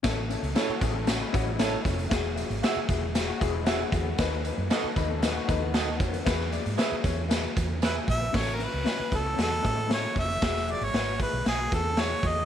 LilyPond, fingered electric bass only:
\new Staff \with { instrumentName = "Fingered electric bass" } { \clef bass \time 4/4 \key a \major \tempo 4 = 116 a,,8. cis,16 r8 a,,4 a,,4 f,,8 | e,,8. gis,,16 r8 e,,4 e,,4 e,8 | dis,8. fis,16 r8 dis,4 dis,4 f,8 | e,8. gis,16 r8 e,4 e,4 bes,,8 |
a,,8. cis,16 r8 cis,8 e,8 a,4 f,,8 | e,,8. gis,,16 gis,,8. b,,16 b,,8 e,4 e,8 | }